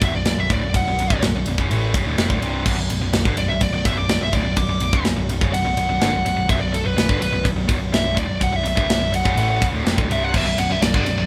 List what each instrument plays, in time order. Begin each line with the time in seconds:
0.01 picked electric bass B0, distorted electric guitar B1 F#2, lead electric guitar E5, kick, ride
0.14 picked electric bass B0, distorted electric guitar B1 F#2, lead electric guitar D5
0.25 picked electric bass B0, distorted electric guitar B1 F#2, lead electric guitar D5, snare, ride
0.37 picked electric bass B0, distorted electric guitar B1 F#2, lead electric guitar E5
0.50 picked electric bass D1, distorted electric guitar D2 A2, lead electric guitar D5, kick, ride
0.62 picked electric bass B0, distorted electric guitar B1 F#2
0.74 picked electric bass B0, distorted electric guitar B1 F#2, lead electric guitar F#5, kick, ride
0.87 picked electric bass B0, distorted electric guitar B1 F#2
0.98 picked electric bass B0, distorted electric guitar B1 F#2, ride
1.10 picked electric bass C1, distorted electric guitar C2 G2, kick
1.22 picked electric bass B0, distorted electric guitar B1 F#2, snare, ride
1.34 picked electric bass B0, distorted electric guitar B1 F#2
1.46 picked electric bass B0, distorted electric guitar B1 F#2, ride
1.58 picked electric bass F#1, distorted electric guitar F#2 C#3, kick
1.71 picked electric bass A1, distorted electric guitar A2 E3 A3, ride
1.94 picked electric bass F#1, distorted electric guitar F#2 C#3, kick, ride
2.06 picked electric bass D1, distorted electric guitar D2 A2
2.17 picked electric bass F1, distorted electric guitar F2 C3, snare, ride
2.30 picked electric bass D1, distorted electric guitar D2 A2, kick
2.41 picked electric bass C1, distorted electric guitar C2 G2 C3, ride
2.65 picked electric bass B0, distorted electric guitar B1 F#2, kick, crash
2.77 picked electric bass B0, distorted electric guitar B1 F#2
2.90 picked electric bass B0, distorted electric guitar B1 F#2, ride
3.01 picked electric bass B0, distorted electric guitar B1 F#2
3.13 picked electric bass B0, distorted electric guitar B1 F#2, snare, ride
3.25 picked electric bass G1, distorted electric guitar G2 D3, kick
3.37 picked electric bass B0, distorted electric guitar B1 F#2, lead electric guitar D5, ride
3.49 picked electric bass B0, distorted electric guitar B1 F#2, lead electric guitar E5
3.61 picked electric bass B0, distorted electric guitar B1 F#2, lead electric guitar D5, kick, ride
3.73 picked electric bass B0, distorted electric guitar B1 F#2, lead electric guitar D5
3.85 picked electric bass B0, distorted electric guitar B1 F#2, lead electric guitar E5, kick, ride
3.96 picked electric bass B0, distorted electric guitar B1 F#2, lead electric guitar D5
4.08 picked electric bass B0, distorted electric guitar B1 F#2, lead electric guitar D5, snare, ride
4.21 picked electric bass B0, distorted electric guitar B1 F#2, lead electric guitar E5
4.32 picked electric bass D1, distorted electric guitar D2 A2, lead electric guitar D5, kick, ride
4.44 picked electric bass B0, distorted electric guitar B1 F#2
4.57 picked electric bass B0, distorted electric guitar B1 F#2, lead electric guitar D6, kick, ride
4.69 picked electric bass B0, distorted electric guitar B1 F#2
4.80 picked electric bass B0, distorted electric guitar B1 F#2, ride
4.93 picked electric bass C1, distorted electric guitar C2 G2, kick
5.04 picked electric bass B0, distorted electric guitar B1 F#2, snare, ride
5.16 picked electric bass B0, distorted electric guitar B1 F#2
5.29 picked electric bass B0, distorted electric guitar B1 F#2, ride
5.41 picked electric bass F#1, distorted electric guitar F#2 C#3, kick
5.53 picked electric bass B0, distorted electric guitar B1 F#2, lead electric guitar F#5, ride
5.65 picked electric bass B0, distorted electric guitar B1 F#2
5.77 picked electric bass B0, distorted electric guitar B1 F#2, ride
5.89 picked electric bass B0, distorted electric guitar B1 F#2
6.01 picked electric bass G1, distorted electric guitar G2 D3, snare, ride
6.12 picked electric bass B0, distorted electric guitar B1 F#2
6.25 picked electric bass B0, distorted electric guitar B1 F#2, ride
6.36 picked electric bass B0, distorted electric guitar B1 F#2
6.48 picked electric bass B0, distorted electric guitar B1 F#2, lead electric guitar E5, kick, ride
6.60 picked electric bass B0, distorted electric guitar B1 F#2, lead electric guitar D5
6.72 picked electric bass B0, distorted electric guitar B1 F#2, lead electric guitar A4, ride
6.84 picked electric bass B0, distorted electric guitar B1 F#2, lead electric guitar B4
6.96 picked electric bass B0, distorted electric guitar B1 F#2, snare, ride
7.08 picked electric bass G1, distorted electric guitar G2 D3, kick
7.20 picked electric bass B0, distorted electric guitar B1 F#2, lead electric guitar B4, ride
7.32 picked electric bass B0, distorted electric guitar B1 F#2
7.44 picked electric bass B0, distorted electric guitar B1 F#2, kick, ride
7.56 picked electric bass B0, distorted electric guitar B1 F#2
7.68 picked electric bass B0, distorted electric guitar B1 F#2, kick, ride
7.79 picked electric bass B0, distorted electric guitar B1 F#2
7.92 picked electric bass B0, distorted electric guitar B1 F#2, lead electric guitar E5, snare, ride
8.04 picked electric bass B0, distorted electric guitar B1 F#2
8.14 picked electric bass D1, distorted electric guitar D2 A2, kick, ride
8.19 lead electric guitar D5
8.27 picked electric bass B0, distorted electric guitar B1 F#2
8.40 picked electric bass B0, distorted electric guitar B1 F#2, lead electric guitar F#5, kick, ride
8.52 picked electric bass B0, distorted electric guitar B1 F#2, lead electric guitar E5
8.63 picked electric bass B0, distorted electric guitar B1 F#2, ride
8.68 lead electric guitar E5
8.75 picked electric bass C1, distorted electric guitar C2 G2, kick
8.87 picked electric bass B0, distorted electric guitar B1 F#2, snare, ride
8.99 picked electric bass B0, distorted electric guitar B1 F#2
9.12 picked electric bass B0, distorted electric guitar B1 F#2, lead electric guitar F#5, ride
9.24 picked electric bass F#1, distorted electric guitar F#2 C#3, kick
9.36 picked electric bass A1, distorted electric guitar A2 E3 A3, ride
9.40 lead electric guitar F#5
9.61 picked electric bass F#1, distorted electric guitar F#2 C#3, kick, ride
9.73 picked electric bass D1, distorted electric guitar D2 A2
9.84 picked electric bass F1, distorted electric guitar F2 C3, snare, ride
9.97 picked electric bass D1, distorted electric guitar D2 A2, kick
10.09 picked electric bass C1, distorted electric guitar C2 G2 C3, lead electric guitar E5, ride
10.24 lead electric guitar F#5
10.34 picked electric bass B0, distorted electric guitar B1 F#2, lead electric guitar E5, kick, crash
10.45 picked electric bass B0, distorted electric guitar B1 F#2, lead electric guitar E5
10.57 picked electric bass B0, distorted electric guitar B1 F#2, lead electric guitar F#5, ride
10.69 picked electric bass B0, distorted electric guitar B1 F#2, lead electric guitar E5
10.81 picked electric bass B0, distorted electric guitar B1 F#2, lead electric guitar D5, snare, ride
10.94 picked electric bass G1, distorted electric guitar G2 D3, kick
11.06 picked electric bass B0, distorted electric guitar B1 F#2, ride
11.16 picked electric bass B0, distorted electric guitar B1 F#2